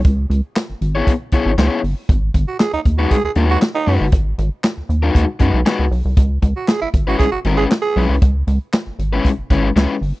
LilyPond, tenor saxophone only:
\new Staff \with { instrumentName = "Tenor saxophone" } { \time 4/4 \key cis \minor \tempo 4 = 118 r1 | r8. fis'16 gis'16 dis'16 r16 fis'16 gis'16 gis'16 r16 fis'16 r16 dis'8 r16 | r1 | r8. fis'16 gis'16 e'16 r16 fis'16 gis'16 fis'16 r16 gis'16 r16 gis'8 r16 |
r1 | }